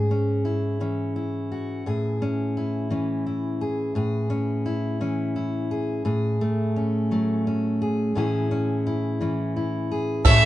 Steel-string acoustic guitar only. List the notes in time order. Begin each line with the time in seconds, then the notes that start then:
Already playing: G#2 C#4 G#4
0.11 C#4
0.45 E4
0.80 E3 C#4
1.16 E4
1.52 F#4
1.86 A2 G#4
2.22 C#4
2.57 E4
2.90 E3 C#4
3.26 E4
3.61 G#4
3.95 A2 G#4
4.30 C#4
4.66 E4
5.01 E3 C#4
5.36 E4
5.71 G#4
6.05 A2 G#4
6.41 A3
6.76 C#4
7.11 F#3 A3
7.47 C#4
7.82 G#4
8.15 A2 E3 C#4 E4 G#4
8.51 C#4
8.87 E4
9.21 E3 C#4
9.56 E4
9.91 G#4